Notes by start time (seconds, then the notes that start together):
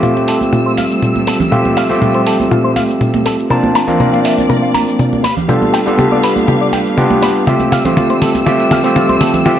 Already playing: F3 G3 A3 C4 F4 G4 E6
0.03 F4, mid tom, high conga, cabasa
0.17 C5, muted conga
0.28 A4, open hi-hat, cabasa
0.41 high conga, cabasa
0.53 F4, mid tom, cabasa
0.66 C5
0.77 F5, open hi-hat, high conga, cabasa
0.91 cabasa
1.02 mid tom, cabasa
1.16 high conga
1.27 A4, open hi-hat, muted conga, cabasa
1.40 low conga, cabasa
1.51 A3 C4 F4 G4 E5, mid tom, cabasa
1.65 high conga
1.77 F5, open hi-hat, cabasa
1.89 A3 C4 F4 G4, muted conga, cabasa
2.02 F4, mid tom, high conga, cabasa
2.14 C5, muted conga
2.27 A4, open hi-hat, cabasa
2.40 high conga, cabasa
2.51 F4, mid tom, cabasa
2.64 C5
2.76 F5, open hi-hat, high conga, cabasa
2.90 cabasa
3.01 mid tom, cabasa
3.14 muted conga, high conga
3.25 A4, open hi-hat, muted conga, cabasa
3.39 cabasa
3.50 F3 A#3 C4 D4 F4 A#4 D5 A5, mid tom, cabasa
3.64 high conga
3.75 A#5, open hi-hat, cabasa
3.87 A#3 C4 D4 F4, muted conga, low conga, cabasa
4.00 A#4, mid tom, high conga, cabasa
4.13 F5, muted conga
4.25 E5, open hi-hat, cabasa
4.38 high conga, cabasa
4.49 A#4, mid tom, cabasa
4.62 F5
4.74 A#5, open hi-hat, high conga, cabasa
4.88 cabasa
4.99 mid tom, cabasa
5.13 high conga
5.24 B3 G4 B4 F5, open hi-hat, muted conga, cabasa
5.37 low conga, cabasa
5.48 G3 B3 D4 F4 G4 A4, mid tom, cabasa
5.62 high conga
5.73 G5, open hi-hat, cabasa
5.86 G3 B3 D4 F4 A4, muted conga, cabasa
5.98 G4, mid tom, high conga, cabasa
6.12 D5, muted conga
6.23 B4, open hi-hat, cabasa
6.36 high conga, cabasa
6.48 G4, mid tom, cabasa
6.61 D5
6.73 G5, open hi-hat, high conga, cabasa
6.87 cabasa
6.97 G3 B3 D4 F4 G4, mid tom, cabasa
7.10 muted conga, high conga
7.22 B4, open hi-hat, muted conga, cabasa
7.36 cabasa
7.47 F3 G3 A3 C4 F4 G4 E5 E6, closed hi-hat, mid tom, cabasa
7.60 closed hi-hat, high conga
7.72 F5, open hi-hat, mid tom, cabasa
7.84 A3 C4 F4 G4, closed hi-hat, muted conga, low conga, cabasa
7.97 F4, closed hi-hat, mid tom, high conga, cabasa
8.10 C5, closed hi-hat, muted conga
8.22 A4, open hi-hat, mid tom, cabasa
8.35 closed hi-hat, high conga, cabasa
8.46 A3 C4 F4 G4 E5, closed hi-hat, mid tom, cabasa
8.60 closed hi-hat
8.71 F5, open hi-hat, mid tom, high conga, cabasa
8.83 A3 C4 F4 G4, closed hi-hat, cabasa
8.96 F4, closed hi-hat, mid tom, cabasa
9.09 C5, closed hi-hat, high conga
9.21 A4, open hi-hat, mid tom, muted conga, cabasa
9.34 closed hi-hat, low conga, cabasa
9.45 A3 C4 F4 G4 E5, closed hi-hat, mid tom, cabasa